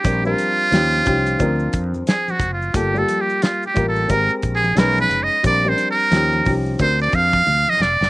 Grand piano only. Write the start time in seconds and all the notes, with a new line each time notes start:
0.04 G3 C4 D4 A#4
0.24 G3 C4 D4 A#4
0.71 F3 C#4 D#4 G4
1.05 F3 C#4 D#4 G4
1.38 F3 C4 D4 A#4
2.73 G3 A#3 F4 A4
2.94 G3 A#3 F4 G4
3.74 G3 A#3 F4 A#4
4.08 G#3 C4 G4 A#4
4.75 G#3 C#4 D#4 B4
5.43 G3 C4 D4 A#4
5.64 G3 C4 C#4 A#4
5.72 D4
6.11 F3 C#4 D#4 G4
6.44 F3 C#4 D#4 G4
6.78 C4 D4 F#4 A#4